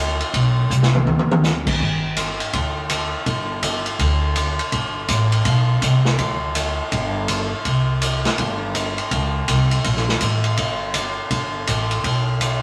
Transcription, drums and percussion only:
0.20 ride soft
0.34 kick soft
0.34 ride medium
0.71 hi-hat pedal medium
0.83 snare medium
0.95 mid tom medium
1.07 mid tom medium
1.19 mid tom medium
1.31 mid tom medium
1.44 snare medium
1.44 hi-hat pedal medium
1.67 kick medium
1.67 crash medium
1.80 kick soft
2.17 kick soft
2.17 hi-hat pedal medium
2.17 ride medium
2.40 ride soft
2.53 kick soft
2.53 ride medium
2.90 kick soft
2.90 hi-hat pedal medium
2.90 ride medium
3.26 kick soft
3.26 ride soft
3.63 kick soft
3.63 hi-hat pedal medium
3.63 ride medium
3.86 ride soft
3.99 kick soft
3.99 ride medium
4.36 kick soft
4.36 hi-hat pedal soft
4.36 ride medium
4.59 ride soft
4.72 kick soft
4.72 ride medium
5.08 kick soft
5.08 hi-hat pedal medium
5.08 ride medium
5.32 ride medium
5.45 kick soft
5.45 ride medium
5.82 kick soft
5.82 hi-hat pedal medium
5.82 ride medium
6.05 snare medium
6.19 kick soft
6.19 ride medium
6.55 kick soft
6.55 hi-hat pedal medium
6.55 ride medium
6.92 kick soft
6.92 ride medium
7.28 kick soft
7.28 hi-hat pedal medium
7.28 ride medium
7.65 kick soft
7.65 ride medium
8.02 kick soft
8.02 hi-hat pedal soft
8.02 ride medium
8.25 snare soft
8.25 ride soft
8.38 kick soft
8.38 ride medium
8.75 kick soft
8.75 hi-hat pedal medium
8.75 ride medium
8.98 ride soft
9.11 kick soft
9.11 ride medium
9.48 kick soft
9.48 hi-hat pedal medium
9.48 ride medium
9.71 ride medium
9.84 kick soft
9.84 ride medium
9.96 snare soft
10.09 snare soft
10.21 kick soft
10.21 hi-hat pedal medium
10.21 ride medium
10.44 ride soft
10.57 kick soft
10.57 ride medium
10.94 kick soft
10.94 hi-hat pedal medium
10.94 ride medium
11.30 kick soft
11.30 ride medium
11.67 kick soft
11.67 hi-hat pedal medium
11.67 ride medium
11.91 ride soft
12.04 kick soft
12.04 ride medium
12.41 kick soft
12.41 hi-hat pedal medium
12.41 ride medium

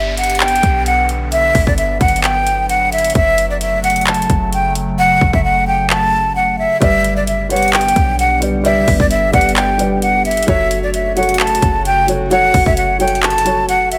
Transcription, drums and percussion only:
0.17 closed hi-hat medium
0.24 closed hi-hat medium
0.30 closed hi-hat medium
0.35 closed hi-hat medium
0.40 clap loud
0.40 closed hi-hat soft
0.48 closed hi-hat medium
0.56 closed hi-hat medium
0.63 kick medium
0.63 closed hi-hat medium
0.86 closed hi-hat medium
1.09 closed hi-hat medium
1.32 closed hi-hat medium
1.55 kick loud
1.55 open hi-hat medium
1.67 kick loud
1.78 closed hi-hat medium
2.01 kick loud
2.01 closed hi-hat medium
2.08 closed hi-hat medium
2.16 closed hi-hat medium
2.24 clap loud
2.24 closed hi-hat medium
2.47 closed hi-hat medium
2.69 closed hi-hat medium
2.92 closed hi-hat medium
2.98 closed hi-hat medium
3.04 closed hi-hat medium
3.10 closed hi-hat medium
3.15 kick loud
3.15 closed hi-hat medium
3.38 closed hi-hat medium
3.61 closed hi-hat medium
3.84 closed hi-hat medium
3.90 closed hi-hat medium
3.96 closed hi-hat medium
4.01 closed hi-hat medium
4.07 clap loud
4.07 closed hi-hat soft
4.14 closed hi-hat medium
4.22 closed hi-hat medium
4.30 kick medium
4.30 closed hi-hat medium
4.53 closed hi-hat medium
4.75 closed hi-hat medium
5.21 kick loud
5.33 kick loud
5.90 clap loud
6.82 kick loud
6.82 closed hi-hat medium
7.04 closed hi-hat medium
7.27 closed hi-hat medium
7.50 closed hi-hat medium
7.56 closed hi-hat medium
7.63 closed hi-hat medium
7.68 closed hi-hat medium
7.73 clap loud
7.73 closed hi-hat soft
7.81 closed hi-hat medium
7.88 closed hi-hat medium
7.96 kick medium
7.96 closed hi-hat medium
8.19 closed hi-hat medium
8.42 closed hi-hat medium
8.65 closed hi-hat medium
8.88 kick loud
8.88 open hi-hat medium
9.00 kick medium
9.11 closed hi-hat medium
9.34 kick loud
9.34 closed hi-hat medium
9.41 closed hi-hat medium
9.49 closed hi-hat medium
9.56 clap loud
9.56 closed hi-hat medium
9.79 closed hi-hat medium
10.02 closed hi-hat medium
10.25 closed hi-hat medium
10.31 closed hi-hat medium
10.37 closed hi-hat medium
10.43 closed hi-hat medium
10.48 kick loud
10.48 closed hi-hat medium
10.71 closed hi-hat medium
10.94 closed hi-hat medium
11.17 closed hi-hat medium
11.23 closed hi-hat medium
11.29 closed hi-hat medium
11.34 closed hi-hat medium
11.40 clap loud
11.40 closed hi-hat soft
11.47 closed hi-hat medium
11.55 closed hi-hat medium
11.62 kick medium
11.62 closed hi-hat medium
11.85 closed hi-hat medium
12.08 closed hi-hat medium
12.31 closed hi-hat medium
12.54 kick loud
12.54 open hi-hat medium
12.66 kick loud
12.77 closed hi-hat medium
13.00 closed hi-hat medium
13.08 closed hi-hat medium
13.15 closed hi-hat soft
13.23 clap loud
13.23 closed hi-hat soft
13.30 closed hi-hat medium
13.38 closed hi-hat medium
13.46 closed hi-hat medium
13.69 closed hi-hat medium
13.92 closed hi-hat medium

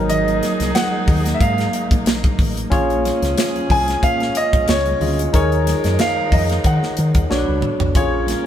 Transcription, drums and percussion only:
0.10 closed hi-hat medium
0.10 muted conga soft
0.10 low conga medium
0.27 closed hi-hat soft
0.27 muted conga soft
0.42 snare soft
0.42 closed hi-hat medium
0.42 high conga medium
0.60 snare soft
0.60 closed hi-hat medium
0.74 snare loud
0.74 closed hi-hat medium
0.74 muted conga soft
0.93 high conga soft
1.06 kick loud
1.06 open hi-hat medium
1.06 high conga medium
1.06 low conga medium
1.26 snare soft
1.26 closed hi-hat medium
1.41 kick loud
1.41 closed hi-hat medium
1.58 snare soft
1.58 closed hi-hat soft
1.73 closed hi-hat medium
1.91 kick loud
1.91 closed hi-hat medium
1.91 high conga medium
2.05 snare loud
2.05 closed hi-hat medium
2.05 muted conga soft
2.24 kick loud
2.24 closed hi-hat soft
2.24 muted conga soft
2.24 high conga medium
2.38 kick medium
2.38 open hi-hat medium
2.38 high conga medium
2.38 low conga medium
2.57 closed hi-hat medium
2.71 kick loud
2.71 closed hi-hat medium
2.71 low conga medium
2.89 closed hi-hat soft
2.89 muted conga soft
3.04 snare soft
3.04 closed hi-hat medium
3.04 high conga medium
3.23 snare soft
3.23 closed hi-hat medium
3.37 snare loud
3.37 closed hi-hat loud
3.37 muted conga soft
3.55 closed hi-hat soft
3.55 muted conga soft
3.55 high conga soft
3.69 kick medium
3.69 open hi-hat medium
3.69 high conga medium
3.69 low conga medium
3.88 snare soft
3.88 closed hi-hat medium
4.03 kick medium
4.03 closed hi-hat medium
4.20 snare soft
4.20 closed hi-hat soft
4.35 closed hi-hat medium
4.53 kick loud
4.53 closed hi-hat medium
4.53 high conga medium
4.68 snare loud
4.68 closed hi-hat medium
4.68 muted conga soft
4.86 closed hi-hat soft
4.86 high conga medium
5.00 open hi-hat medium
5.00 high conga medium
5.00 low conga medium
5.19 closed hi-hat medium
5.34 kick loud
5.34 closed hi-hat medium
5.34 low conga medium
5.52 closed hi-hat soft
5.67 snare soft
5.67 closed hi-hat medium
5.67 high conga medium
5.84 snare soft
5.84 closed hi-hat medium
5.99 snare loud
5.99 closed hi-hat medium
6.18 high conga soft
6.31 kick loud
6.31 open hi-hat medium
6.31 high conga medium
6.31 low conga medium
6.49 snare soft
6.49 closed hi-hat medium
6.64 kick medium
6.64 closed hi-hat medium
6.83 snare soft
6.97 closed hi-hat medium
7.14 kick loud
7.14 closed hi-hat medium
7.14 high conga medium
7.29 snare medium
7.29 muted conga soft
7.48 muted conga soft
7.48 high conga medium
7.61 mid tom medium
7.61 high conga medium
7.61 low conga medium
7.80 floor tom medium
7.95 kick loud
7.95 closed hi-hat medium
7.95 muted conga soft
7.95 low conga medium
8.27 snare soft
8.27 closed hi-hat medium
8.27 high conga medium

